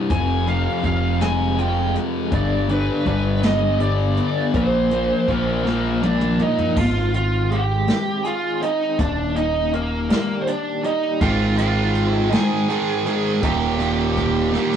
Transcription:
Already playing: G2 C3
0.10 F1 F2 C3 F3 G#5, kick, closed hi-hat
0.47 F2 C3 F3 F5, closed hi-hat
0.84 F1 F2 C3 F3 F5, kick, closed hi-hat
1.21 F2 C3 F3 G#3 G#5, snare, closed hi-hat
1.58 F2 C3 F3 G5, closed hi-hat
1.95 G#3, closed hi-hat
2.31 G1 G2 D3 G3 D5, kick, closed hi-hat
2.69 G2 D3 G3 B4, closed hi-hat
3.06 G1 G2 D3 G3 B4, kick, closed hi-hat
3.42 G2 D3 G3 B3 D#5, snare, closed hi-hat
3.79 G2 D3 G3 D5, closed hi-hat
4.17 B3, closed hi-hat
4.53 A#1 A#2 F3 A#3 C5, kick, closed hi-hat
4.91 A#2 F3 A#3, closed hi-hat
5.28 A#1 A#2 F3 A#3 A#4, kick, closed hi-hat
5.64 A#2 F3 A#3 A#4, snare
6.02 A#2 F3 A#3 D4 D5, high tom
6.21 mid tom
6.39 A#3 D#4 D#5, mid tom
6.58 floor tom
6.76 G#1 G#2 F4 F5, kick, crash
7.13 D#3 F4 F5, closed hi-hat
7.50 G#3 G4 G5, closed hi-hat
7.87 C4, snare, closed hi-hat
8.24 F4 G#4 F5, closed hi-hat
8.61 C4 D#4 D#5, closed hi-hat
8.99 D#1 D#2 D4 D5, kick, closed hi-hat
9.35 A#2 D#4 D#5, closed hi-hat
9.73 D#3 A#3 A#4, closed hi-hat
10.09 G3 A#3 A#4, snare, closed hi-hat
10.42 C5
10.47 D4 D5, closed hi-hat
10.84 G3 D#4 D#5, closed hi-hat
11.21 G#1 G#2 D#3 G#3 F4 F5, kick, closed hi-hat
11.57 G#2 D#3 G#3 F4 F5, closed hi-hat
11.95 closed hi-hat
12.13 D#5
12.32 G#2 D#3 G#3 G#4 G#5, snare, closed hi-hat
12.69 G#2 D#3 G#3, closed hi-hat
13.06 G#2 D#3 G#3, closed hi-hat
13.42 D#1 D#2 A#2 D#3 G4 G5, kick, closed hi-hat
13.79 D#2 A#2 D#3, closed hi-hat
14.17 kick, closed hi-hat
14.52 D#2 A#2 D#3, snare
14.73 snare

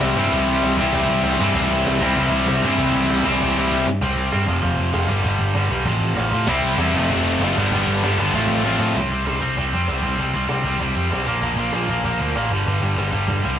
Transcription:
Already playing: C3 E3 G3 C4 E4
0.00 C2, cajon slap
0.16 G2 C3 E3 G3 E4, cajon bass
0.20 C4
0.31 C2, cajon bass
0.47 C2
0.62 C2, cajon slap
0.77 C2 E3 G3 C4 E4, cajon bass
0.82 C3
0.93 C2, cajon bass
1.08 C2
1.23 C2, cajon slap
1.39 G2 C3 E3 G3 E4, cajon bass
1.43 C4
1.55 C2, cajon bass
1.71 C2
1.86 C2, cajon slap
2.01 C2 C3 E3 G3 C4 E4, cajon bass
2.17 C2, cajon bass
2.32 C2
2.46 C2, cajon slap
2.62 G2 C3 E3 G3 C4, cajon bass
2.67 E4
2.78 C2, cajon bass
2.93 C2
3.08 C2, cajon slap
3.24 C2 E3 G3 C4 E4, cajon bass
3.28 C3
3.40 C2, cajon bass
3.57 C2
3.72 C2
3.87 G2
4.01 C2 C3 G3 C4, cajon bass
4.16 C2
4.32 G2 C3 G3 C4, cajon slap
4.47 F1 F2 C3 F3, cajon bass
4.61 F1 F2 C3 F3, cajon bass
4.78 F1
4.93 F1 F2 C3 F3, cajon slap
5.08 G1 G2 D3 G3, cajon bass
5.23 G1 G2 D3 G3, cajon bass
5.39 G1
5.54 G1 G2 D3 G3, cajon slap
5.70 B1 G2 D3 G3, cajon bass
5.85 A1 F2 C3 F3, cajon bass
6.01 A1
6.15 A1 F2 C3 F3, cajon slap
6.32 F2 A2 C3 F3, cajon bass
6.47 C2 C3 G3 C4 E4, cajon bass
6.62 C2
6.77 E2 C3 G3 C4 E4, cajon slap
6.93 F1 F2 C3 F3 C4, cajon bass
6.97 A3
7.09 F1 F2 C3 F3 A3 C4, cajon bass
7.23 F1
7.39 F#1 F2 C3 F3 C4, cajon slap
7.43 A3
7.56 G1 G2 D3 G3 B3 D4, cajon bass
7.72 G1 G2 D3 G3 B3 D4, cajon bass
7.87 G1
8.03 G1 G2 D3 G3 B3 D4, cajon slap
8.18 G1 G2 D3 G3 B3 D4, cajon bass
8.34 A1 F2 A2 C3 F3 A3 C4 F4, cajon bass
8.48 A1
8.63 A1 F2 A2 C3 F3 A3 C4 F4, cajon slap
8.79 F2 A2 C3 F3 A3 C4 F4, cajon slap
8.84 A2
8.94 C2 C3 G3 C4, cajon bass
9.10 C2 C3 G3 C4
9.25 C2 C3 G3 C4, cajon slap
9.41 C2 C3 G3 C4, cajon bass
9.57 C2 C3 G3 C4, cajon bass
9.72 F2 C3 G3 C4
9.88 C2 C3 G3 C4, cajon slap
10.03 C2 C3 G3 C4, cajon bass
10.18 C2 C3 G3 C4, cajon bass
10.34 C2 C3 G3 C4
10.48 C2 C3 G3 C4, cajon slap
10.64 C2 C3 G3 C4, cajon bass
10.79 C2 C3 G3 C4, cajon bass
10.96 F2 C3 G3 C4
11.11 B1 C3 G3 C4, cajon slap
11.26 A#1 A#2 F3 A#3, cajon bass
11.42 A#1 A#2 F3 A#3, cajon bass
11.57 A#1 A#2 F3 A#3
11.73 A#1 A#2 F3 A#3, cajon slap
11.88 A#1 A#2 F3 A#3, cajon bass
12.04 A#1 A#2 F3 A#3, cajon bass
12.19 D2 A#2 F3 A#3
12.35 A1 A#2 F3 A#3, cajon slap
12.50 G1 G2 D3 G3, cajon bass
12.66 G1 G2 D3 G3, cajon bass
12.82 G1 G2 D3 G3
12.97 G1 G2 D3 G3, cajon slap
13.13 G1 G2 D3 G3, cajon bass
13.28 G1 G2 D3 G3, cajon bass
13.44 C2 G2 D3 G3

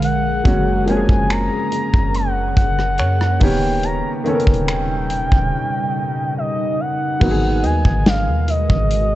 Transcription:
Already playing: A#1 D3 G#3 G#4 A#4
0.02 F#5, closed hi-hat
0.44 F#1 C#3 F#3 G#3 A#3 C#4, kick, closed hi-hat
0.48 F#4
0.86 F3 G#3 A#3 C#4 G#5, closed hi-hat
0.90 F#4
0.97 G#4
1.09 F#1, kick
1.30 A#5, finger snap, closed hi-hat
1.72 closed hi-hat
1.94 F#1, kick
2.14 F#5, closed hi-hat
2.57 F#1 F#5, kick, closed hi-hat
2.79 cross-stick
2.98 F#2 C#5, finger snap, closed hi-hat
3.21 cross-stick
3.40 D#1 B2 D#3 G3 A#3 B3 C#4 D#4 G5, kick, open hi-hat
3.44 G4
3.83 A#5, closed hi-hat
4.24 D#3 A#3 B3 C#4 G5, closed hi-hat
4.29 A4
4.35 A#4
4.40 closed hi-hat
4.47 D#1, kick
4.54 closed hi-hat
4.68 finger snap, closed hi-hat
5.10 closed hi-hat
5.32 D#1, kick
6.38 D#5
6.80 F#5
7.20 G#1 B2 F#3 G#3 A#3 B3 D#4 F#4 A#4, kick, crash
7.24 F#4
7.31 G#4
7.64 D#2 D#5 G#5, closed hi-hat
7.85 G#1, kick
8.06 F5, snare, closed hi-hat
8.27 D#2
8.48 D#5, closed hi-hat
8.70 G#1, kick
8.91 closed hi-hat

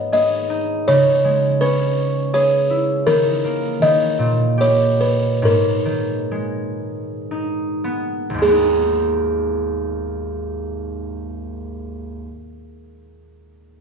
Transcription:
Already playing: G#2 D#3 B3
0.12 G#4 D#5
0.50 D#4
0.88 C#3 C#5
1.25 G#3
1.61 C#4 B4
2.34 G#4 C#5
2.70 E4
3.06 D#3 A#4
3.44 A#3
3.82 D#3 D#5
4.19 A#2
4.58 G4 C#5
5.01 B4
5.42 G#2 A#4
5.85 D#3
6.31 G#3
7.31 D#4
7.84 B3
8.30 G#1
8.34 D#2
8.38 G#3 G#4
8.43 A#3
8.47 B3
8.52 D#4

